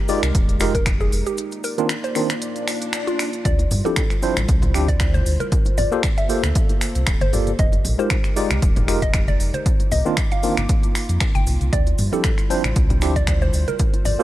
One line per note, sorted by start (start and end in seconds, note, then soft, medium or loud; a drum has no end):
0.00 1.36 G#3 medium
0.00 3.41 D#4 medium
0.00 1.36 G4 medium
0.00 1.36 A#4 medium
0.08 0.20 G#3 loud
0.08 0.20 D#4 medium
0.08 0.21 F4 medium
0.08 0.21 G4 medium
0.08 0.21 D5 loud
0.08 open hi-hat medium
0.08 cabasa medium
0.23 0.32 C2 medium
0.23 finger snap medium
0.23 closed hi-hat medium
0.23 cabasa soft
0.35 0.62 D#1 loud
0.35 kick loud
0.35 closed hi-hat medium
0.35 cabasa medium
0.49 closed hi-hat soft
0.49 cabasa soft
0.60 1.08 F1 medium
0.60 0.72 G#3 medium
0.60 0.72 D#4 medium
0.60 0.72 F4 medium
0.60 0.72 G4 medium
0.60 0.73 A#4 loud
0.60 finger snap medium
0.60 open hi-hat loud
0.60 cabasa medium
0.75 0.97 A#4 medium
0.75 kick medium
0.75 closed hi-hat medium
0.75 cabasa soft
0.86 finger snap loud
0.86 kick loud
0.86 closed hi-hat medium
0.86 cabasa soft
1.00 1.23 G#4 medium
1.00 cabasa soft
1.12 1.23 F1 medium
1.12 open hi-hat medium
1.12 cabasa medium
1.26 1.60 G4 loud
1.26 closed hi-hat soft
1.26 cabasa soft
1.37 3.43 A#3 medium
1.37 7.55 F4 medium
1.37 3.43 D5 medium
1.37 closed hi-hat medium
1.37 cabasa medium
1.51 closed hi-hat soft
1.51 cabasa soft
1.64 1.99 A#4 loud
1.64 open hi-hat loud
1.64 cabasa medium
1.78 1.88 D#3 medium
1.78 1.88 A#3 medium
1.78 1.88 C4 medium
1.78 1.88 D4 medium
1.78 1.88 F4 loud
1.78 closed hi-hat soft
1.78 cabasa soft
1.89 finger snap loud
1.89 closed hi-hat medium
1.89 cabasa soft
2.04 2.38 C5 medium
2.04 closed hi-hat soft
2.04 cabasa soft
2.15 2.27 D#3 medium
2.15 2.27 A#3 medium
2.15 2.28 C4 medium
2.15 2.28 D4 medium
2.15 2.28 F4 loud
2.15 finger snap soft
2.15 open hi-hat medium
2.15 cabasa medium
2.30 finger snap medium
2.30 closed hi-hat medium
2.30 cabasa soft
2.42 closed hi-hat medium
2.42 swell medium
2.42 cabasa soft
2.56 closed hi-hat soft
2.56 cabasa soft
2.68 finger snap medium
2.68 open hi-hat loud
2.68 cabasa medium
2.82 closed hi-hat medium
2.82 cabasa soft
2.93 finger snap loud
2.93 closed hi-hat medium
2.93 cabasa soft
3.07 3.41 F4 loud
3.07 closed hi-hat soft
3.07 cabasa soft
3.19 finger snap medium
3.19 open hi-hat medium
3.19 cabasa medium
3.33 closed hi-hat soft
3.33 cabasa soft
3.45 3.66 D2 loud
3.45 5.50 G3 medium
3.45 5.50 E4 medium
3.45 7.55 C5 medium
3.45 3.80 D5 loud
3.45 kick loud
3.45 closed hi-hat medium
3.45 cabasa soft
3.59 closed hi-hat soft
3.59 high bongo medium
3.59 cabasa soft
3.71 3.82 G2 medium
3.71 open hi-hat loud
3.71 low conga medium
3.71 cabasa medium
3.85 4.01 F3 medium
3.85 4.01 C4 medium
3.85 4.01 D4 medium
3.85 4.01 E4 medium
3.85 4.02 G4 medium
3.85 4.19 A4 loud
3.85 cabasa soft
3.96 finger snap loud
3.96 kick loud
3.96 closed hi-hat medium
3.96 cabasa medium
4.10 finger snap soft
4.10 closed hi-hat soft
4.10 high bongo soft
4.10 cabasa soft
4.22 4.34 F3 loud
4.22 4.34 C4 medium
4.22 4.34 D4 medium
4.22 4.34 E4 medium
4.22 4.35 C5 loud
4.22 open hi-hat medium
4.22 cabasa medium
4.36 4.46 A1 medium
4.36 finger snap medium
4.36 closed hi-hat medium
4.36 high conga medium
4.36 cabasa soft
4.48 4.76 C2 loud
4.48 kick loud
4.48 closed hi-hat medium
4.48 cabasa medium
4.62 closed hi-hat soft
4.62 high bongo medium
4.62 low conga medium
4.62 cabasa soft
4.74 5.22 D2 medium
4.74 4.86 F3 medium
4.74 4.86 C4 medium
4.74 4.86 D4 medium
4.74 4.86 E4 medium
4.74 4.86 G4 loud
4.74 finger snap medium
4.74 open hi-hat loud
4.74 cabasa loud
4.88 5.11 D5 medium
4.88 kick medium
4.88 closed hi-hat medium
4.88 cabasa soft
5.00 finger snap loud
5.00 kick loud
5.00 closed hi-hat medium
5.00 cabasa soft
5.14 5.37 C5 medium
5.14 high conga medium
5.14 cabasa soft
5.26 5.37 D2 loud
5.26 open hi-hat medium
5.26 cabasa medium
5.40 5.74 A#4 loud
5.40 closed hi-hat soft
5.40 high conga medium
5.40 cabasa soft
5.52 7.57 A#3 medium
5.52 7.57 A4 medium
5.52 kick loud
5.52 closed hi-hat medium
5.52 cabasa medium
5.65 closed hi-hat soft
5.65 high bongo medium
5.65 cabasa soft
5.78 5.89 G1 medium
5.78 6.13 D5 loud
5.78 open hi-hat loud
5.78 low conga medium
5.78 cabasa medium
5.92 6.01 A#3 medium
5.92 6.02 F4 medium
5.92 6.02 G4 medium
5.92 6.02 A4 medium
5.92 6.02 C5 loud
5.92 cabasa soft
6.03 finger snap loud
6.03 kick loud
6.03 closed hi-hat medium
6.03 cabasa medium
6.18 6.52 E5 medium
6.18 closed hi-hat soft
6.18 cabasa soft
6.29 6.41 A#3 medium
6.29 6.41 F4 medium
6.29 6.41 G4 medium
6.29 6.41 A4 medium
6.29 6.41 C5 loud
6.29 open hi-hat loud
6.29 cabasa medium
6.43 6.53 D2 medium
6.43 finger snap medium
6.43 closed hi-hat medium
6.43 high conga medium
6.43 cabasa soft
6.55 kick loud
6.55 closed hi-hat medium
6.55 cabasa medium
6.69 closed hi-hat soft
6.69 high bongo medium
6.69 cabasa soft
6.81 finger snap medium
6.81 open hi-hat loud
6.81 cabasa loud
6.95 7.05 C2 loud
6.95 closed hi-hat medium
6.95 cabasa soft
7.07 7.18 D1 medium
7.07 finger snap loud
7.07 kick loud
7.07 closed hi-hat medium
7.07 cabasa medium
7.21 7.30 G1 medium
7.21 7.55 C5 loud
7.21 closed hi-hat soft
7.21 high conga medium
7.21 cabasa soft
7.33 7.54 G1 medium
7.33 7.51 A#3 medium
7.33 7.51 F4 medium
7.33 7.51 G4 medium
7.33 7.51 A4 medium
7.33 7.51 D5 medium
7.33 open hi-hat loud
7.33 low conga medium
7.33 cabasa medium
7.47 closed hi-hat soft
7.47 high conga medium
7.47 cabasa soft
7.59 7.80 F1 loud
7.59 9.64 G#3 medium
7.59 11.69 D#4 medium
7.59 9.64 G4 medium
7.59 9.64 A#4 medium
7.59 7.94 D#5 loud
7.59 kick loud
7.59 closed hi-hat medium
7.59 cabasa medium
7.72 closed hi-hat soft
7.72 high bongo medium
7.72 cabasa soft
7.85 7.96 A#1 medium
7.85 open hi-hat loud
7.85 low conga medium
7.85 cabasa medium
7.98 8.15 G#3 medium
7.98 8.15 D#4 medium
7.98 8.15 F4 medium
7.98 8.15 G4 medium
7.98 8.15 A#4 medium
7.98 8.33 C5 medium
7.98 cabasa soft
8.10 finger snap loud
8.10 kick loud
8.10 closed hi-hat medium
8.10 cabasa medium
8.24 finger snap soft
8.24 closed hi-hat soft
8.24 high bongo soft
8.24 cabasa soft
8.36 8.48 G#3 loud
8.36 8.48 D#4 loud
8.36 8.48 F4 medium
8.36 8.48 G4 medium
8.36 8.48 D5 loud
8.36 open hi-hat loud
8.36 cabasa loud
8.50 8.60 C2 medium
8.50 finger snap medium
8.50 closed hi-hat medium
8.50 high conga medium
8.50 cabasa soft
8.62 8.90 D#1 loud
8.62 kick loud
8.62 closed hi-hat medium
8.62 cabasa medium
8.76 closed hi-hat soft
8.76 high bongo soft
8.76 low conga loud
8.76 cabasa soft
8.88 9.36 F1 medium
8.88 9.00 G#3 medium
8.88 9.00 D#4 medium
8.88 9.00 F4 medium
8.88 9.00 G4 medium
8.88 9.00 A#4 loud
8.88 finger snap medium
8.88 open hi-hat loud
8.88 cabasa loud
9.02 9.25 D#5 medium
9.02 kick medium
9.02 closed hi-hat medium
9.02 cabasa soft
9.14 finger snap loud
9.14 kick loud
9.14 closed hi-hat medium
9.14 cabasa soft
9.28 9.51 D5 medium
9.28 high conga loud
9.28 cabasa soft
9.40 9.51 F1 medium
9.40 open hi-hat medium
9.40 cabasa loud
9.54 9.88 C5 medium
9.54 closed hi-hat soft
9.54 high conga medium
9.54 cabasa soft
9.66 11.71 A#3 medium
9.66 14.23 F4 medium
9.66 11.71 D6 medium
9.66 kick loud
9.66 closed hi-hat medium
9.66 cabasa medium
9.80 closed hi-hat soft
9.80 high bongo medium
9.80 cabasa soft
9.91 10.03 C2 medium
9.91 10.27 D#5 loud
9.91 open hi-hat loud
9.91 low conga medium
9.91 cabasa medium
10.05 10.15 D#3 loud
10.05 10.15 A#3 medium
10.05 10.15 C4 medium
10.05 10.16 D4 medium
10.05 10.16 F4 loud
10.05 cabasa soft
10.17 finger snap loud
10.17 kick loud
10.17 closed hi-hat medium
10.17 cabasa medium
10.32 10.65 F5 medium
10.32 closed hi-hat soft
10.32 high bongo soft
10.32 cabasa soft
10.43 10.55 D#3 medium
10.43 10.55 A#3 medium
10.43 10.55 C4 medium
10.43 10.55 D4 medium
10.43 10.55 F4 loud
10.43 open hi-hat medium
10.43 cabasa loud
10.57 10.67 G1 medium
10.57 finger snap medium
10.57 closed hi-hat medium
10.57 high conga medium
10.57 cabasa soft
10.69 kick loud
10.69 closed hi-hat medium
10.69 cabasa medium
10.83 closed hi-hat soft
10.83 high bongo soft
10.83 cabasa soft
10.95 finger snap medium
10.95 open hi-hat loud
10.95 cabasa medium
11.09 11.18 F2 loud
11.09 closed hi-hat medium
11.09 cabasa soft
11.20 finger snap loud
11.20 kick loud
11.20 closed hi-hat medium
11.20 cabasa medium
11.35 11.44 G1 medium
11.35 11.69 G5 medium
11.35 closed hi-hat soft
11.35 high conga medium
11.35 cabasa soft
11.47 11.58 C2 medium
11.47 open hi-hat medium
11.47 low conga medium
11.47 cabasa loud
11.61 11.70 C2 loud
11.61 closed hi-hat soft
11.61 high conga medium
11.61 cabasa soft
11.73 11.93 D2 loud
11.73 13.78 G3 medium
11.73 13.78 E4 medium
11.73 14.23 C5 medium
11.73 12.08 D5 loud
11.73 kick loud
11.73 closed hi-hat medium
11.73 cabasa medium
11.87 closed hi-hat soft
11.87 high bongo medium
11.87 cabasa soft
11.98 12.10 G2 medium
11.98 open hi-hat loud
11.98 low conga medium
11.98 cabasa medium
12.12 12.29 F3 medium
12.12 12.29 C4 medium
12.12 12.29 D4 medium
12.12 12.29 E4 medium
12.12 12.29 G4 medium
12.12 12.46 A4 medium
12.12 cabasa soft
12.24 finger snap loud
12.24 kick loud
12.24 closed hi-hat medium
12.24 cabasa medium
12.38 finger snap soft
12.38 closed hi-hat soft
12.38 high bongo soft
12.38 cabasa soft
12.50 12.62 F3 loud
12.50 12.62 C4 medium
12.50 12.62 D4 medium
12.50 12.62 E4 medium
12.50 12.62 C5 loud
12.50 open hi-hat medium
12.50 cabasa medium
12.64 12.74 A1 medium
12.64 finger snap medium
12.64 closed hi-hat medium
12.64 high conga medium
12.64 cabasa soft
12.76 13.04 C2 loud
12.76 kick loud
12.76 closed hi-hat medium
12.76 cabasa medium
12.90 closed hi-hat soft
12.90 high bongo medium
12.90 low conga loud
12.90 cabasa soft
13.01 13.50 D2 medium
13.01 13.13 F3 medium
13.01 13.14 C4 medium
13.01 13.14 D4 medium
13.01 13.14 E4 medium
13.01 13.14 G4 loud
13.01 finger snap medium
13.01 open hi-hat loud
13.01 cabasa medium
13.16 13.39 D5 medium
13.16 kick medium
13.16 closed hi-hat medium
13.16 cabasa soft
13.27 finger snap loud
13.27 kick loud
13.27 closed hi-hat medium
13.27 cabasa medium
13.42 13.65 C5 medium
13.42 high conga medium
13.42 cabasa soft
13.53 13.65 D2 medium
13.53 open hi-hat medium
13.53 cabasa medium
13.68 14.02 A#4 medium
13.68 closed hi-hat soft
13.68 high conga medium
13.68 cabasa soft
13.79 14.23 A#3 medium
13.79 14.23 A4 medium
13.79 kick loud
13.79 closed hi-hat medium
13.79 cabasa medium
13.94 closed hi-hat soft
13.94 high bongo medium
13.94 cabasa soft
14.05 14.16 G1 medium
14.05 14.23 D5 loud
14.05 open hi-hat loud
14.05 low conga medium
14.05 cabasa medium
14.19 14.23 A#3 medium
14.19 14.23 F4 medium
14.19 14.23 G4 medium
14.19 14.23 A4 medium
14.19 14.23 C5 loud